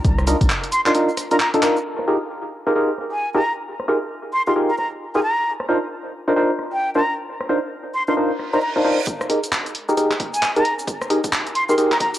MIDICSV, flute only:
0, 0, Header, 1, 2, 480
1, 0, Start_track
1, 0, Tempo, 451128
1, 51, Time_signature, 4, 2, 24, 8
1, 12967, End_track
2, 0, Start_track
2, 0, Title_t, "Flute"
2, 0, Program_c, 0, 73
2, 769, Note_on_c, 0, 84, 88
2, 864, Note_off_c, 0, 84, 0
2, 917, Note_on_c, 0, 84, 74
2, 977, Note_off_c, 0, 84, 0
2, 1394, Note_on_c, 0, 82, 87
2, 1455, Note_off_c, 0, 82, 0
2, 1485, Note_on_c, 0, 82, 75
2, 1582, Note_off_c, 0, 82, 0
2, 3318, Note_on_c, 0, 80, 82
2, 3505, Note_off_c, 0, 80, 0
2, 3559, Note_on_c, 0, 82, 81
2, 3746, Note_off_c, 0, 82, 0
2, 4608, Note_on_c, 0, 84, 79
2, 4704, Note_off_c, 0, 84, 0
2, 4758, Note_on_c, 0, 84, 66
2, 4817, Note_off_c, 0, 84, 0
2, 4997, Note_on_c, 0, 82, 79
2, 5057, Note_off_c, 0, 82, 0
2, 5089, Note_on_c, 0, 82, 67
2, 5185, Note_off_c, 0, 82, 0
2, 5476, Note_on_c, 0, 80, 82
2, 5551, Note_off_c, 0, 80, 0
2, 5567, Note_on_c, 0, 82, 85
2, 5868, Note_off_c, 0, 82, 0
2, 7160, Note_on_c, 0, 79, 83
2, 7346, Note_off_c, 0, 79, 0
2, 7402, Note_on_c, 0, 82, 88
2, 7587, Note_off_c, 0, 82, 0
2, 8451, Note_on_c, 0, 84, 83
2, 8546, Note_off_c, 0, 84, 0
2, 8597, Note_on_c, 0, 84, 69
2, 8657, Note_off_c, 0, 84, 0
2, 9077, Note_on_c, 0, 82, 82
2, 9137, Note_off_c, 0, 82, 0
2, 9169, Note_on_c, 0, 82, 70
2, 9265, Note_off_c, 0, 82, 0
2, 10999, Note_on_c, 0, 80, 86
2, 11186, Note_off_c, 0, 80, 0
2, 11242, Note_on_c, 0, 82, 90
2, 11427, Note_off_c, 0, 82, 0
2, 12292, Note_on_c, 0, 84, 84
2, 12386, Note_off_c, 0, 84, 0
2, 12440, Note_on_c, 0, 84, 73
2, 12498, Note_off_c, 0, 84, 0
2, 12680, Note_on_c, 0, 82, 83
2, 12738, Note_off_c, 0, 82, 0
2, 12772, Note_on_c, 0, 82, 72
2, 12866, Note_off_c, 0, 82, 0
2, 12967, End_track
0, 0, End_of_file